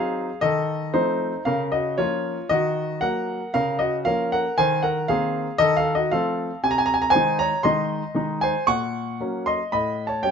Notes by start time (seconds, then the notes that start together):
Already playing: F#3 C4 D#4 G#4 F5
0.41 D#3 A4 D#5
0.94 F3 A3 C4 D#4 C5
1.45 C#3 A#4 F5
1.72 F#4 D#5
1.98 F3 A#3 C#4 F4 C#5
2.49 D#3 F#4 D#5
3.01 F#3 A#3 A#4 F#5
3.54 C#3 A#4 F5
3.79 F#4 D#5
4.05 F3 A#3 C#4 A#4 F5
4.32 A#4 F#5
4.58 D#3 C5 G#5
4.83 A#4 F#5
5.08 D#3 A#3 C4 G#4 F5
5.58 D#3 A4 D#5
5.77 A4 F5
5.95 F#4 D#5
6.12 F3 A3 C4 A4 F5
6.63 C3 G#5
6.71 A#5
6.78 G#5
6.86 A#5
6.94 G#5
7.02 A#5
7.10 C5 G#5
7.15 D#3 G#3 D#4
7.39 C#5 A#5
7.63 D#3 G#3 D#4 D#5 C6
8.14 D#3 G#3 D#4
8.41 C5 G#5
8.67 A#2 F#5 C#6
9.20 F#3 A#3 C#4
9.46 D#5 C6
9.72 A2 D#5 B5
10.07 C#5 A5
10.23 G3 C#4 C#5 G5